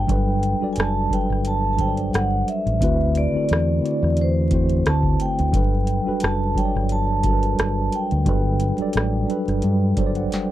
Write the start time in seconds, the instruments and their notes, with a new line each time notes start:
Already playing: tine electric piano G3 F#4 A4, vibraphone G5
0.07 fingered electric bass G1, tine electric piano F#3 G3 D4 A4, kick, closed hi-hat
0.11 tine electric piano B4
0.43 closed hi-hat
0.59 tine electric piano G3 D4 F#4 A4, muted fingered electric bass stroke
0.64 tine electric piano D5
0.73 vibraphone G#5, closed hi-hat
0.77 fingered electric bass F#1, vibraphone A5, cross-stick
1.09 tine electric piano F#3 G3 D4 A4, kick, closed hi-hat
1.13 tine electric piano B4, vibraphone G5
1.30 fingered electric bass G1, cross-stick
1.45 vibraphone A5, closed hi-hat
1.73 tine electric piano G3, vibraphone A5
1.78 tine electric piano F#3 D4 A4 C5, vibraphone G5, kick, closed hi-hat
1.88 tine electric piano D5
1.97 closed hi-hat
2.13 fingered electric bass G1, vibraphone F#5, cross-stick, closed hi-hat
2.48 vibraphone E5, closed hi-hat
2.66 fingered electric bass A1, closed hi-hat
2.79 fingered electric bass D2, tine electric piano D3 A3 C4 E4 F#4, kick, closed hi-hat
2.84 tine electric piano B4
3.15 vibraphone D5, closed hi-hat
3.32 tine electric piano D3 A3 C4 E4 F#4, muted fingered electric bass stroke
3.37 tine electric piano A4
3.49 fingered electric bass E2, closed hi-hat
3.53 cross-stick
3.81 tine electric piano D3 A3 C4 E4 F#4
3.85 tine electric piano D5, closed hi-hat
4.03 fingered electric bass E2, cross-stick
4.17 closed hi-hat
4.21 vibraphone C5
4.50 tine electric piano D3 A3 C4 E4 F#4, kick, closed hi-hat
4.54 tine electric piano C5
4.69 closed hi-hat
4.86 fingered electric bass D2, vibraphone A5, cross-stick, closed hi-hat
5.03 kick
5.20 vibraphone G5, closed hi-hat
5.39 fingered electric bass D2, closed hi-hat
5.52 fingered electric bass G1, tine electric piano F#3 G3 D4 A4, kick, closed hi-hat
5.56 tine electric piano B4
5.87 closed hi-hat
6.05 tine electric piano G3 D4 F#4 A4 B4, muted fingered electric bass stroke
6.20 fingered electric bass F#1, vibraphone A5, closed hi-hat
6.24 cross-stick
6.54 tine electric piano F#3 G3 D4 A4, vibraphone G5, kick, closed hi-hat
6.59 tine electric piano C#5
6.65 tine electric piano D5
6.75 fingered electric bass G1, cross-stick
6.89 vibraphone A5, closed hi-hat
7.23 tine electric piano G3 D4 F#4 A4, kick, closed hi-hat
7.27 tine electric piano A#4
7.33 tine electric piano B4
7.43 closed hi-hat
7.59 fingered electric bass G1, cross-stick, closed hi-hat
7.92 vibraphone G5, closed hi-hat
8.11 fingered electric bass D2, closed hi-hat
8.25 fingered electric bass G1, tine electric piano F#3 G3 D4 A4, kick, closed hi-hat
8.29 tine electric piano B4
8.60 closed hi-hat
8.78 tine electric piano F#3 G3 D4 A4 D5, muted fingered electric bass stroke, closed hi-hat
8.93 fingered electric bass A1, closed hi-hat
8.97 cross-stick
9.27 tine electric piano F#3 G3 D4 A4, closed hi-hat
9.31 tine electric piano B4
9.48 fingered electric bass G1, cross-stick, closed hi-hat
9.62 fingered electric bass G2, closed hi-hat
9.96 fingered electric bass G1, tine electric piano F#3 G3 D4 A4 D5, kick, closed hi-hat
10.00 tine electric piano C5
10.06 tine electric piano D5
10.15 tine electric piano F#5, closed hi-hat
10.32 tine electric piano G5, muted fingered electric bass stroke, snare, closed hi-hat